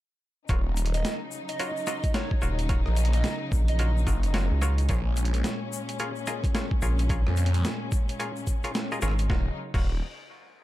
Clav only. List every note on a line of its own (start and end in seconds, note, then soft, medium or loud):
0.49 0.61 F4 medium
0.49 0.61 F#4 medium
0.49 0.61 A#4 medium
0.49 0.61 C#5 loud
1.59 1.71 F4 medium
1.59 1.71 F#4 medium
1.59 1.71 A#4 medium
1.59 1.71 C#5 medium
1.87 2.12 F4 medium
1.87 2.12 F#4 medium
1.87 2.12 A#4 medium
1.87 2.12 D#5 medium
2.14 2.26 F4 medium
2.14 2.26 F#4 medium
2.14 2.26 A#4 medium
2.14 2.26 C#5 medium
2.42 2.67 F4 medium
2.42 2.67 F#4 medium
2.42 2.67 A#4 medium
2.42 2.67 C#5 loud
2.69 2.81 F4 medium
2.69 2.81 F#4 medium
2.69 2.81 A#4 medium
2.69 2.81 C#5 loud
3.79 3.91 F4 medium
3.79 3.91 F#4 medium
3.79 3.91 A#4 medium
3.79 3.91 C#5 medium
4.07 4.32 F4 medium
4.07 4.32 F#4 medium
4.07 4.32 A#4 medium
4.07 4.32 D#5 medium
4.34 4.46 F4 medium
4.34 4.46 F#4 medium
4.34 4.46 A#4 medium
4.34 4.46 C#5 medium
4.62 4.87 F4 medium
4.62 4.87 F#4 medium
4.62 4.87 A#4 medium
4.62 4.87 C#5 loud
4.90 5.01 F4 medium
4.90 5.01 G#4 medium
4.90 5.01 A#4 medium
4.90 5.01 C#5 loud
6.00 6.11 F4 medium
6.00 6.11 G#4 medium
6.00 6.11 A#4 medium
6.00 6.11 C#5 medium
6.27 6.52 F4 medium
6.27 6.52 G#4 medium
6.27 6.52 A#4 medium
6.27 6.52 D#5 medium
6.55 6.66 F4 medium
6.55 6.66 G#4 medium
6.55 6.66 A#4 medium
6.55 6.66 C#5 medium
6.82 7.07 F4 medium
6.82 7.07 G#4 medium
6.82 7.07 A#4 medium
6.82 7.07 C#5 loud
7.10 7.21 F4 medium
7.10 7.21 G#4 medium
7.10 7.21 A#4 medium
7.10 7.21 C#5 loud
8.20 8.31 F4 medium
8.20 8.31 G#4 medium
8.20 8.31 A#4 medium
8.20 8.31 C#5 medium
8.64 8.71 F4 medium
8.64 8.71 G#4 medium
8.64 8.71 A#4 medium
8.64 8.71 C#5 loud
8.92 8.99 F4 medium
8.92 8.99 G#4 medium
8.92 8.99 A#4 medium
8.92 8.99 D#5 medium
9.02 9.14 F4 loud
9.02 9.14 G#4 medium
9.02 9.14 A#4 medium
9.02 9.14 C#5 loud
9.30 9.48 F4 medium
9.30 9.48 F#4 medium
9.30 9.48 A#4 medium
9.30 9.48 C#5 medium
9.74 9.94 F4 medium
9.74 9.94 F#4 medium
9.74 9.94 A#4 medium
9.74 9.94 C#5 medium